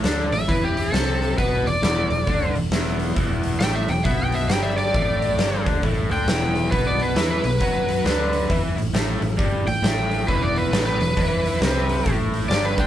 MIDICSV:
0, 0, Header, 1, 5, 480
1, 0, Start_track
1, 0, Tempo, 445104
1, 1486, Time_signature, 4, 2, 24, 8
1, 13878, End_track
2, 0, Start_track
2, 0, Title_t, "Electric slide guitar"
2, 0, Program_c, 0, 29
2, 360, Note_on_c, 0, 76, 107
2, 518, Note_off_c, 0, 76, 0
2, 520, Note_on_c, 0, 71, 103
2, 678, Note_off_c, 0, 71, 0
2, 688, Note_on_c, 0, 67, 96
2, 999, Note_off_c, 0, 67, 0
2, 999, Note_on_c, 0, 69, 107
2, 1468, Note_off_c, 0, 69, 0
2, 1490, Note_on_c, 0, 71, 94
2, 1799, Note_off_c, 0, 71, 0
2, 1800, Note_on_c, 0, 74, 102
2, 2735, Note_off_c, 0, 74, 0
2, 3879, Note_on_c, 0, 79, 110
2, 4038, Note_off_c, 0, 79, 0
2, 4048, Note_on_c, 0, 76, 102
2, 4200, Note_on_c, 0, 79, 102
2, 4203, Note_off_c, 0, 76, 0
2, 4355, Note_on_c, 0, 76, 96
2, 4358, Note_off_c, 0, 79, 0
2, 4516, Note_off_c, 0, 76, 0
2, 4530, Note_on_c, 0, 79, 110
2, 4683, Note_off_c, 0, 79, 0
2, 4686, Note_on_c, 0, 76, 105
2, 4831, Note_on_c, 0, 79, 99
2, 4841, Note_off_c, 0, 76, 0
2, 4988, Note_on_c, 0, 76, 100
2, 4993, Note_off_c, 0, 79, 0
2, 5152, Note_off_c, 0, 76, 0
2, 5156, Note_on_c, 0, 74, 90
2, 6091, Note_off_c, 0, 74, 0
2, 6607, Note_on_c, 0, 79, 104
2, 7225, Note_off_c, 0, 79, 0
2, 7237, Note_on_c, 0, 71, 97
2, 7395, Note_off_c, 0, 71, 0
2, 7407, Note_on_c, 0, 74, 92
2, 7560, Note_off_c, 0, 74, 0
2, 7570, Note_on_c, 0, 71, 86
2, 7871, Note_off_c, 0, 71, 0
2, 7884, Note_on_c, 0, 71, 120
2, 9279, Note_off_c, 0, 71, 0
2, 10436, Note_on_c, 0, 79, 101
2, 11059, Note_off_c, 0, 79, 0
2, 11086, Note_on_c, 0, 71, 103
2, 11239, Note_off_c, 0, 71, 0
2, 11241, Note_on_c, 0, 74, 100
2, 11396, Note_off_c, 0, 74, 0
2, 11404, Note_on_c, 0, 71, 96
2, 11706, Note_off_c, 0, 71, 0
2, 11719, Note_on_c, 0, 71, 119
2, 13117, Note_off_c, 0, 71, 0
2, 13471, Note_on_c, 0, 74, 111
2, 13632, Note_off_c, 0, 74, 0
2, 13642, Note_on_c, 0, 71, 107
2, 13798, Note_off_c, 0, 71, 0
2, 13800, Note_on_c, 0, 79, 109
2, 13878, Note_off_c, 0, 79, 0
2, 13878, End_track
3, 0, Start_track
3, 0, Title_t, "Overdriven electric guitar"
3, 0, Program_c, 1, 29
3, 41, Note_on_c, 1, 50, 85
3, 45, Note_on_c, 1, 62, 90
3, 333, Note_off_c, 1, 50, 0
3, 335, Note_off_c, 1, 62, 0
3, 340, Note_on_c, 1, 45, 70
3, 487, Note_off_c, 1, 45, 0
3, 518, Note_on_c, 1, 52, 94
3, 529, Note_on_c, 1, 64, 101
3, 994, Note_off_c, 1, 52, 0
3, 999, Note_on_c, 1, 48, 96
3, 1002, Note_off_c, 1, 64, 0
3, 1007, Note_on_c, 1, 60, 103
3, 1477, Note_off_c, 1, 48, 0
3, 1482, Note_off_c, 1, 60, 0
3, 1484, Note_on_c, 1, 47, 89
3, 1487, Note_on_c, 1, 59, 103
3, 1775, Note_off_c, 1, 47, 0
3, 1777, Note_off_c, 1, 59, 0
3, 1788, Note_on_c, 1, 40, 74
3, 1932, Note_off_c, 1, 40, 0
3, 1967, Note_on_c, 1, 40, 99
3, 1977, Note_on_c, 1, 52, 99
3, 2257, Note_off_c, 1, 40, 0
3, 2262, Note_off_c, 1, 52, 0
3, 2273, Note_on_c, 1, 40, 75
3, 2415, Note_off_c, 1, 40, 0
3, 2449, Note_on_c, 1, 50, 95
3, 2456, Note_on_c, 1, 62, 107
3, 2738, Note_off_c, 1, 50, 0
3, 2742, Note_off_c, 1, 62, 0
3, 2749, Note_on_c, 1, 40, 69
3, 2892, Note_off_c, 1, 40, 0
3, 2934, Note_on_c, 1, 40, 77
3, 2940, Note_on_c, 1, 52, 101
3, 3394, Note_off_c, 1, 40, 0
3, 3399, Note_off_c, 1, 52, 0
3, 3407, Note_on_c, 1, 40, 101
3, 3412, Note_on_c, 1, 52, 108
3, 3881, Note_off_c, 1, 40, 0
3, 3884, Note_off_c, 1, 52, 0
3, 3889, Note_on_c, 1, 45, 92
3, 3893, Note_on_c, 1, 57, 98
3, 4178, Note_off_c, 1, 45, 0
3, 4179, Note_off_c, 1, 57, 0
3, 4199, Note_on_c, 1, 40, 69
3, 4337, Note_off_c, 1, 40, 0
3, 4367, Note_on_c, 1, 47, 106
3, 4373, Note_on_c, 1, 59, 123
3, 4841, Note_off_c, 1, 47, 0
3, 4843, Note_on_c, 1, 43, 90
3, 4844, Note_off_c, 1, 59, 0
3, 4852, Note_on_c, 1, 55, 101
3, 5319, Note_off_c, 1, 43, 0
3, 5321, Note_on_c, 1, 45, 85
3, 5323, Note_off_c, 1, 55, 0
3, 5331, Note_on_c, 1, 57, 102
3, 5797, Note_off_c, 1, 45, 0
3, 5802, Note_off_c, 1, 57, 0
3, 5802, Note_on_c, 1, 43, 99
3, 5805, Note_on_c, 1, 55, 104
3, 6093, Note_off_c, 1, 43, 0
3, 6094, Note_off_c, 1, 55, 0
3, 6100, Note_on_c, 1, 50, 89
3, 6105, Note_on_c, 1, 62, 98
3, 6277, Note_off_c, 1, 50, 0
3, 6280, Note_off_c, 1, 62, 0
3, 6288, Note_on_c, 1, 45, 100
3, 6291, Note_on_c, 1, 57, 107
3, 6576, Note_off_c, 1, 45, 0
3, 6577, Note_off_c, 1, 57, 0
3, 6583, Note_on_c, 1, 50, 80
3, 6592, Note_on_c, 1, 62, 93
3, 6758, Note_off_c, 1, 50, 0
3, 6763, Note_off_c, 1, 62, 0
3, 6768, Note_on_c, 1, 40, 94
3, 6771, Note_on_c, 1, 52, 100
3, 7240, Note_off_c, 1, 40, 0
3, 7241, Note_off_c, 1, 52, 0
3, 7243, Note_on_c, 1, 47, 91
3, 7248, Note_on_c, 1, 59, 106
3, 7717, Note_off_c, 1, 47, 0
3, 7719, Note_off_c, 1, 59, 0
3, 7724, Note_on_c, 1, 52, 87
3, 7730, Note_on_c, 1, 64, 104
3, 8013, Note_off_c, 1, 52, 0
3, 8016, Note_off_c, 1, 64, 0
3, 8026, Note_on_c, 1, 47, 69
3, 8168, Note_off_c, 1, 47, 0
3, 8202, Note_on_c, 1, 54, 99
3, 8206, Note_on_c, 1, 66, 111
3, 8674, Note_off_c, 1, 54, 0
3, 8678, Note_off_c, 1, 66, 0
3, 8678, Note_on_c, 1, 50, 89
3, 8684, Note_on_c, 1, 62, 104
3, 9154, Note_off_c, 1, 50, 0
3, 9157, Note_off_c, 1, 62, 0
3, 9162, Note_on_c, 1, 52, 94
3, 9167, Note_on_c, 1, 64, 111
3, 9451, Note_off_c, 1, 52, 0
3, 9454, Note_off_c, 1, 64, 0
3, 9463, Note_on_c, 1, 45, 74
3, 9606, Note_off_c, 1, 45, 0
3, 9635, Note_on_c, 1, 45, 95
3, 9641, Note_on_c, 1, 57, 99
3, 9918, Note_off_c, 1, 45, 0
3, 9930, Note_off_c, 1, 57, 0
3, 9931, Note_on_c, 1, 45, 76
3, 10080, Note_off_c, 1, 45, 0
3, 10109, Note_on_c, 1, 43, 105
3, 10117, Note_on_c, 1, 55, 115
3, 10405, Note_off_c, 1, 43, 0
3, 10408, Note_off_c, 1, 55, 0
3, 10413, Note_on_c, 1, 45, 72
3, 10561, Note_off_c, 1, 45, 0
3, 10595, Note_on_c, 1, 45, 92
3, 10602, Note_on_c, 1, 57, 100
3, 11072, Note_off_c, 1, 45, 0
3, 11076, Note_off_c, 1, 57, 0
3, 11079, Note_on_c, 1, 40, 92
3, 11083, Note_on_c, 1, 52, 122
3, 11552, Note_on_c, 1, 45, 97
3, 11554, Note_off_c, 1, 40, 0
3, 11556, Note_off_c, 1, 52, 0
3, 11562, Note_on_c, 1, 57, 101
3, 11846, Note_off_c, 1, 45, 0
3, 11851, Note_off_c, 1, 57, 0
3, 11858, Note_on_c, 1, 40, 66
3, 12003, Note_off_c, 1, 40, 0
3, 12043, Note_on_c, 1, 52, 91
3, 12046, Note_on_c, 1, 64, 102
3, 12517, Note_off_c, 1, 52, 0
3, 12518, Note_off_c, 1, 64, 0
3, 12524, Note_on_c, 1, 48, 98
3, 12532, Note_on_c, 1, 60, 107
3, 12995, Note_off_c, 1, 48, 0
3, 12999, Note_on_c, 1, 45, 92
3, 13001, Note_off_c, 1, 60, 0
3, 13005, Note_on_c, 1, 57, 105
3, 13475, Note_off_c, 1, 45, 0
3, 13478, Note_off_c, 1, 57, 0
3, 13481, Note_on_c, 1, 43, 88
3, 13484, Note_on_c, 1, 55, 107
3, 13771, Note_off_c, 1, 43, 0
3, 13773, Note_off_c, 1, 55, 0
3, 13779, Note_on_c, 1, 50, 96
3, 13788, Note_on_c, 1, 62, 107
3, 13878, Note_off_c, 1, 50, 0
3, 13878, Note_off_c, 1, 62, 0
3, 13878, End_track
4, 0, Start_track
4, 0, Title_t, "Fingered electric bass"
4, 0, Program_c, 2, 33
4, 41, Note_on_c, 2, 38, 90
4, 321, Note_off_c, 2, 38, 0
4, 336, Note_on_c, 2, 33, 85
4, 508, Note_off_c, 2, 33, 0
4, 523, Note_on_c, 2, 40, 86
4, 971, Note_off_c, 2, 40, 0
4, 1000, Note_on_c, 2, 36, 103
4, 1449, Note_off_c, 2, 36, 0
4, 1485, Note_on_c, 2, 35, 85
4, 1764, Note_off_c, 2, 35, 0
4, 1780, Note_on_c, 2, 28, 84
4, 1951, Note_off_c, 2, 28, 0
4, 1962, Note_on_c, 2, 28, 86
4, 2242, Note_off_c, 2, 28, 0
4, 2260, Note_on_c, 2, 28, 87
4, 2431, Note_off_c, 2, 28, 0
4, 2452, Note_on_c, 2, 38, 100
4, 2727, Note_off_c, 2, 38, 0
4, 2741, Note_on_c, 2, 28, 80
4, 2912, Note_off_c, 2, 28, 0
4, 2922, Note_on_c, 2, 28, 108
4, 3371, Note_off_c, 2, 28, 0
4, 3408, Note_on_c, 2, 28, 97
4, 3853, Note_off_c, 2, 28, 0
4, 3886, Note_on_c, 2, 33, 98
4, 4164, Note_off_c, 2, 33, 0
4, 4186, Note_on_c, 2, 28, 87
4, 4354, Note_off_c, 2, 28, 0
4, 4368, Note_on_c, 2, 35, 90
4, 4813, Note_off_c, 2, 35, 0
4, 4836, Note_on_c, 2, 31, 96
4, 5286, Note_off_c, 2, 31, 0
4, 5331, Note_on_c, 2, 33, 92
4, 5774, Note_off_c, 2, 33, 0
4, 5797, Note_on_c, 2, 31, 94
4, 6078, Note_off_c, 2, 31, 0
4, 6109, Note_on_c, 2, 38, 98
4, 6275, Note_off_c, 2, 38, 0
4, 6289, Note_on_c, 2, 33, 95
4, 6564, Note_off_c, 2, 33, 0
4, 6577, Note_on_c, 2, 38, 107
4, 6748, Note_off_c, 2, 38, 0
4, 6754, Note_on_c, 2, 28, 89
4, 7204, Note_off_c, 2, 28, 0
4, 7250, Note_on_c, 2, 35, 85
4, 7693, Note_off_c, 2, 35, 0
4, 7720, Note_on_c, 2, 40, 84
4, 7999, Note_off_c, 2, 40, 0
4, 8018, Note_on_c, 2, 35, 85
4, 8188, Note_off_c, 2, 35, 0
4, 8202, Note_on_c, 2, 42, 93
4, 8648, Note_off_c, 2, 42, 0
4, 8678, Note_on_c, 2, 38, 99
4, 9126, Note_off_c, 2, 38, 0
4, 9165, Note_on_c, 2, 40, 90
4, 9441, Note_off_c, 2, 40, 0
4, 9457, Note_on_c, 2, 33, 75
4, 9627, Note_off_c, 2, 33, 0
4, 9633, Note_on_c, 2, 33, 90
4, 9914, Note_off_c, 2, 33, 0
4, 9933, Note_on_c, 2, 33, 91
4, 10105, Note_off_c, 2, 33, 0
4, 10120, Note_on_c, 2, 31, 95
4, 10398, Note_off_c, 2, 31, 0
4, 10409, Note_on_c, 2, 33, 88
4, 10582, Note_off_c, 2, 33, 0
4, 10592, Note_on_c, 2, 33, 101
4, 11042, Note_off_c, 2, 33, 0
4, 11085, Note_on_c, 2, 28, 95
4, 11529, Note_off_c, 2, 28, 0
4, 11553, Note_on_c, 2, 33, 84
4, 11834, Note_off_c, 2, 33, 0
4, 11849, Note_on_c, 2, 28, 90
4, 12022, Note_off_c, 2, 28, 0
4, 12047, Note_on_c, 2, 40, 92
4, 12491, Note_off_c, 2, 40, 0
4, 12508, Note_on_c, 2, 36, 102
4, 12961, Note_off_c, 2, 36, 0
4, 13003, Note_on_c, 2, 33, 96
4, 13449, Note_off_c, 2, 33, 0
4, 13460, Note_on_c, 2, 31, 92
4, 13749, Note_off_c, 2, 31, 0
4, 13778, Note_on_c, 2, 38, 105
4, 13878, Note_off_c, 2, 38, 0
4, 13878, End_track
5, 0, Start_track
5, 0, Title_t, "Drums"
5, 39, Note_on_c, 9, 46, 75
5, 44, Note_on_c, 9, 38, 101
5, 146, Note_off_c, 9, 46, 0
5, 152, Note_off_c, 9, 38, 0
5, 348, Note_on_c, 9, 46, 63
5, 456, Note_off_c, 9, 46, 0
5, 527, Note_on_c, 9, 36, 103
5, 533, Note_on_c, 9, 46, 80
5, 635, Note_off_c, 9, 36, 0
5, 641, Note_off_c, 9, 46, 0
5, 831, Note_on_c, 9, 46, 65
5, 938, Note_off_c, 9, 46, 0
5, 1010, Note_on_c, 9, 46, 77
5, 1015, Note_on_c, 9, 38, 104
5, 1118, Note_off_c, 9, 46, 0
5, 1123, Note_off_c, 9, 38, 0
5, 1314, Note_on_c, 9, 46, 50
5, 1422, Note_off_c, 9, 46, 0
5, 1491, Note_on_c, 9, 36, 109
5, 1492, Note_on_c, 9, 46, 79
5, 1599, Note_off_c, 9, 36, 0
5, 1600, Note_off_c, 9, 46, 0
5, 1800, Note_on_c, 9, 46, 50
5, 1907, Note_off_c, 9, 46, 0
5, 1970, Note_on_c, 9, 46, 66
5, 1975, Note_on_c, 9, 38, 102
5, 2078, Note_off_c, 9, 46, 0
5, 2083, Note_off_c, 9, 38, 0
5, 2269, Note_on_c, 9, 46, 57
5, 2377, Note_off_c, 9, 46, 0
5, 2449, Note_on_c, 9, 46, 71
5, 2452, Note_on_c, 9, 36, 99
5, 2556, Note_off_c, 9, 46, 0
5, 2560, Note_off_c, 9, 36, 0
5, 2754, Note_on_c, 9, 46, 59
5, 2862, Note_off_c, 9, 46, 0
5, 2926, Note_on_c, 9, 46, 73
5, 2932, Note_on_c, 9, 38, 104
5, 3034, Note_off_c, 9, 46, 0
5, 3040, Note_off_c, 9, 38, 0
5, 3229, Note_on_c, 9, 46, 61
5, 3337, Note_off_c, 9, 46, 0
5, 3412, Note_on_c, 9, 46, 80
5, 3413, Note_on_c, 9, 36, 110
5, 3520, Note_off_c, 9, 46, 0
5, 3521, Note_off_c, 9, 36, 0
5, 3704, Note_on_c, 9, 46, 62
5, 3811, Note_off_c, 9, 46, 0
5, 3885, Note_on_c, 9, 46, 80
5, 3890, Note_on_c, 9, 38, 104
5, 3993, Note_off_c, 9, 46, 0
5, 3998, Note_off_c, 9, 38, 0
5, 4188, Note_on_c, 9, 46, 67
5, 4295, Note_off_c, 9, 46, 0
5, 4365, Note_on_c, 9, 46, 80
5, 4369, Note_on_c, 9, 36, 101
5, 4473, Note_off_c, 9, 46, 0
5, 4477, Note_off_c, 9, 36, 0
5, 4660, Note_on_c, 9, 46, 68
5, 4768, Note_off_c, 9, 46, 0
5, 4846, Note_on_c, 9, 46, 81
5, 4852, Note_on_c, 9, 38, 112
5, 4954, Note_off_c, 9, 46, 0
5, 4960, Note_off_c, 9, 38, 0
5, 5149, Note_on_c, 9, 46, 60
5, 5257, Note_off_c, 9, 46, 0
5, 5332, Note_on_c, 9, 36, 114
5, 5335, Note_on_c, 9, 46, 76
5, 5440, Note_off_c, 9, 36, 0
5, 5443, Note_off_c, 9, 46, 0
5, 5630, Note_on_c, 9, 46, 54
5, 5737, Note_off_c, 9, 46, 0
5, 5807, Note_on_c, 9, 46, 74
5, 5812, Note_on_c, 9, 38, 109
5, 5914, Note_off_c, 9, 46, 0
5, 5920, Note_off_c, 9, 38, 0
5, 6109, Note_on_c, 9, 36, 114
5, 6109, Note_on_c, 9, 46, 57
5, 6217, Note_off_c, 9, 36, 0
5, 6217, Note_off_c, 9, 46, 0
5, 6290, Note_on_c, 9, 36, 102
5, 6291, Note_on_c, 9, 46, 74
5, 6397, Note_off_c, 9, 36, 0
5, 6399, Note_off_c, 9, 46, 0
5, 6590, Note_on_c, 9, 46, 57
5, 6698, Note_off_c, 9, 46, 0
5, 6766, Note_on_c, 9, 46, 67
5, 6771, Note_on_c, 9, 38, 107
5, 6874, Note_off_c, 9, 46, 0
5, 6879, Note_off_c, 9, 38, 0
5, 7069, Note_on_c, 9, 46, 54
5, 7177, Note_off_c, 9, 46, 0
5, 7250, Note_on_c, 9, 36, 96
5, 7251, Note_on_c, 9, 46, 79
5, 7358, Note_off_c, 9, 36, 0
5, 7359, Note_off_c, 9, 46, 0
5, 7543, Note_on_c, 9, 46, 57
5, 7651, Note_off_c, 9, 46, 0
5, 7722, Note_on_c, 9, 46, 81
5, 7727, Note_on_c, 9, 38, 104
5, 7830, Note_off_c, 9, 46, 0
5, 7835, Note_off_c, 9, 38, 0
5, 8021, Note_on_c, 9, 46, 63
5, 8128, Note_off_c, 9, 46, 0
5, 8200, Note_on_c, 9, 46, 82
5, 8205, Note_on_c, 9, 36, 93
5, 8307, Note_off_c, 9, 46, 0
5, 8313, Note_off_c, 9, 36, 0
5, 8503, Note_on_c, 9, 46, 64
5, 8611, Note_off_c, 9, 46, 0
5, 8687, Note_on_c, 9, 46, 73
5, 8693, Note_on_c, 9, 38, 100
5, 8795, Note_off_c, 9, 46, 0
5, 8801, Note_off_c, 9, 38, 0
5, 8982, Note_on_c, 9, 46, 60
5, 9089, Note_off_c, 9, 46, 0
5, 9165, Note_on_c, 9, 36, 102
5, 9168, Note_on_c, 9, 46, 83
5, 9273, Note_off_c, 9, 36, 0
5, 9276, Note_off_c, 9, 46, 0
5, 9469, Note_on_c, 9, 46, 55
5, 9576, Note_off_c, 9, 46, 0
5, 9643, Note_on_c, 9, 46, 72
5, 9648, Note_on_c, 9, 38, 108
5, 9751, Note_off_c, 9, 46, 0
5, 9756, Note_off_c, 9, 38, 0
5, 9944, Note_on_c, 9, 46, 55
5, 10052, Note_off_c, 9, 46, 0
5, 10125, Note_on_c, 9, 36, 107
5, 10126, Note_on_c, 9, 46, 75
5, 10233, Note_off_c, 9, 36, 0
5, 10233, Note_off_c, 9, 46, 0
5, 10431, Note_on_c, 9, 46, 63
5, 10539, Note_off_c, 9, 46, 0
5, 10609, Note_on_c, 9, 46, 69
5, 10615, Note_on_c, 9, 38, 109
5, 10717, Note_off_c, 9, 46, 0
5, 10723, Note_off_c, 9, 38, 0
5, 10907, Note_on_c, 9, 46, 55
5, 11014, Note_off_c, 9, 46, 0
5, 11091, Note_on_c, 9, 36, 98
5, 11094, Note_on_c, 9, 46, 70
5, 11199, Note_off_c, 9, 36, 0
5, 11202, Note_off_c, 9, 46, 0
5, 11390, Note_on_c, 9, 46, 52
5, 11498, Note_off_c, 9, 46, 0
5, 11570, Note_on_c, 9, 46, 74
5, 11575, Note_on_c, 9, 38, 114
5, 11678, Note_off_c, 9, 46, 0
5, 11683, Note_off_c, 9, 38, 0
5, 11868, Note_on_c, 9, 46, 62
5, 11976, Note_off_c, 9, 46, 0
5, 12048, Note_on_c, 9, 36, 101
5, 12049, Note_on_c, 9, 46, 84
5, 12156, Note_off_c, 9, 36, 0
5, 12157, Note_off_c, 9, 46, 0
5, 12354, Note_on_c, 9, 46, 66
5, 12462, Note_off_c, 9, 46, 0
5, 12525, Note_on_c, 9, 46, 78
5, 12530, Note_on_c, 9, 38, 109
5, 12633, Note_off_c, 9, 46, 0
5, 12638, Note_off_c, 9, 38, 0
5, 12825, Note_on_c, 9, 46, 58
5, 12932, Note_off_c, 9, 46, 0
5, 13005, Note_on_c, 9, 36, 110
5, 13006, Note_on_c, 9, 46, 86
5, 13113, Note_off_c, 9, 36, 0
5, 13114, Note_off_c, 9, 46, 0
5, 13304, Note_on_c, 9, 46, 60
5, 13412, Note_off_c, 9, 46, 0
5, 13485, Note_on_c, 9, 46, 78
5, 13491, Note_on_c, 9, 38, 106
5, 13593, Note_off_c, 9, 46, 0
5, 13598, Note_off_c, 9, 38, 0
5, 13782, Note_on_c, 9, 36, 116
5, 13784, Note_on_c, 9, 46, 61
5, 13878, Note_off_c, 9, 36, 0
5, 13878, Note_off_c, 9, 46, 0
5, 13878, End_track
0, 0, End_of_file